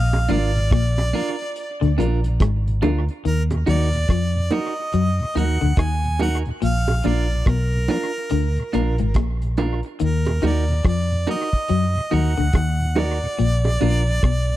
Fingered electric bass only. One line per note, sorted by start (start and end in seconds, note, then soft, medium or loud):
0.00 0.27 A#1 loud
0.30 0.70 G#1 medium
0.72 1.12 A#1 medium
1.82 1.97 D2 medium
1.99 2.38 A#1 medium
2.41 2.81 G#1 loud
2.83 3.07 D2 medium
3.25 3.65 D#2 loud
3.68 4.07 D#2 medium
4.09 4.49 F2 medium
4.94 5.18 F#2 medium
5.36 5.60 D#2 medium
5.62 5.77 D2 medium
5.77 6.42 D#2 medium
6.63 7.03 A#1 medium
7.05 7.45 A#1 medium
7.47 7.87 B1 loud
8.32 8.56 D2 loud
8.74 8.99 A#1 medium
9.00 9.15 G#1 medium
9.15 9.80 A#1 medium
10.01 10.41 D#2 loud
10.43 10.83 D#2 medium
10.85 11.25 F2 medium
11.70 11.95 F#2 medium
12.13 12.37 D#2 medium
12.39 12.54 D2 medium
12.54 13.19 D#2 loud
13.40 13.79 A#1 loud
13.82 14.21 A#1 medium
14.23 14.57 B1 medium